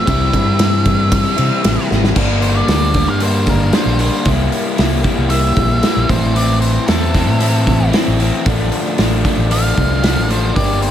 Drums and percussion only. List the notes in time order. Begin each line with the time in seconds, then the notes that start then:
0.07 kick, ride
0.33 kick, ride
0.59 snare, ride
0.86 kick, ride
1.12 kick, ride
1.38 ride
1.64 snare, ride
1.91 snare
2.04 snare
2.16 kick, crash
2.42 open hi-hat
2.68 snare, open hi-hat
2.94 kick, open hi-hat
3.20 open hi-hat
3.46 kick, open hi-hat
3.73 snare, open hi-hat
3.99 open hi-hat
4.25 kick, open hi-hat
4.52 open hi-hat
4.78 snare, open hi-hat
5.04 kick, open hi-hat
5.30 open hi-hat
5.56 kick, open hi-hat
5.83 snare, open hi-hat
6.09 kick, open hi-hat
6.36 open hi-hat
6.62 open hi-hat
6.88 snare, open hi-hat
7.14 kick, open hi-hat
7.41 open hi-hat
7.67 kick, open hi-hat
7.93 snare, open hi-hat
8.20 open hi-hat
8.46 kick, open hi-hat
8.72 open hi-hat
8.98 snare, open hi-hat
9.25 kick, open hi-hat
9.51 open hi-hat
9.77 kick, open hi-hat
10.04 snare, open hi-hat
10.31 open hi-hat
10.56 kick, open hi-hat
10.82 open hi-hat